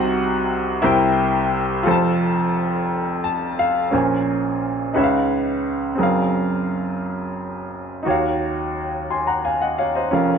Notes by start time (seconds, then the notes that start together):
Already playing: C2 C3 D#4 F#4 C5 F#5
0.82 C2 C3 E4 A#4 C5 G5
1.83 F1 F2 F4 A4
1.88 C5 A5
3.24 A5
3.59 F5
3.91 A#1 A#2 C#4 A#4 C5 G#5
4.94 C#2 C#3 D#4 B4 C#5 E5
5.04 F5
5.95 F#1 F#2 C4 G#4
6.00 A#4 F5
8.03 D#2 D#3 D#4 F#4
8.08 C#5 F5
9.11 G#5 C6
9.27 F#5 A#5
9.45 F5 G#5
9.61 D#5 F#5
9.78 C#5 F5
9.95 C5 D#5
10.11 F1 F2 C#4 F4 A#4 F5